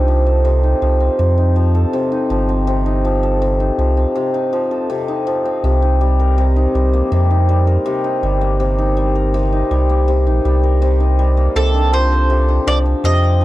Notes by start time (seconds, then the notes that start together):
Already playing: C2 C3 A#3 D#4
0.08 F3
0.26 A4
0.45 C3
0.63 D#4
0.82 C2 F3
1.00 C4
1.19 F2 C3
1.38 D#4
1.56 F3
1.75 A4
1.93 C3
2.12 D#4
2.30 G1 F3
2.49 C4
2.67 C3
2.86 D#4
3.05 F3
3.23 A4
3.42 C3
3.60 D#4
3.78 C2 F3
3.97 C4
4.16 C3
4.34 D#4
4.53 F3
4.71 A4
4.90 C3
5.08 D#4
5.27 F3
5.45 C4
5.63 C2 C3
5.82 D#4
6.01 G3
6.20 A#4
6.38 C3
6.56 D#4
6.75 C2 G3
6.93 A#3
7.12 F2 C3
7.31 D#4
7.49 G3
7.67 A#4
7.86 C3
8.04 D#4
8.23 G1 G3
8.41 A#3
8.60 C3
8.78 D#4
8.97 G3
9.15 A#4
9.34 C3
9.52 D#4
9.71 C2 G3
9.89 A#3
10.08 C3
10.26 A#1 D#4
10.45 C2 G3
10.63 A#4
10.82 C3
11.00 D#4
11.19 G3
11.37 A#3
11.56 C2 C3 A4
11.74 D4
11.93 F3 C5
12.11 A4
12.30 C3
12.48 D4
12.67 C2 F3 D5
12.86 C4
13.04 F2 C3 D#5
13.41 F3